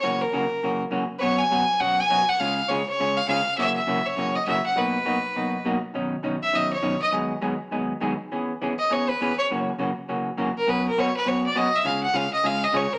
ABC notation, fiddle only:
X:1
M:4/4
L:1/16
Q:"Swing" 1/4=203
K:B
V:1 name="Fiddle"
c2 A8 z4 z3/2 B/2 | c2 g6 f2 g4 f2 | ^e4 c2 c4 e2 e4 | e2 e4 c4 d2 e2 f2 |
B12 z4 | z6 e2 d2 c4 d2 | z16 | z6 d2 c2 B4 c2 |
z12 z2 A2 | B2 A2 c2 B2 c2 =d2 ^d2 e2 | ^e2 f2 e2 d2 e2 d2 c2 A2 |]